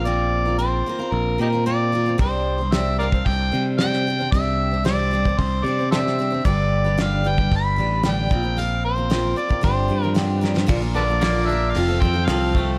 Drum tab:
HH |----------------|o---o---o---o---|o---o---o---o---|o---o---o---o---|
SD |----------------|----o-------oo--|----o-------oo--|----o-------o---|
BD |----------------|o------oo-------|o------oo-------|o------oo-----o-|

HH |o---o---o---o---|o---o---o---o---|
SD |----o-------o-oo|----o-------o---|
BD |-------oo-------|o---------o---o-|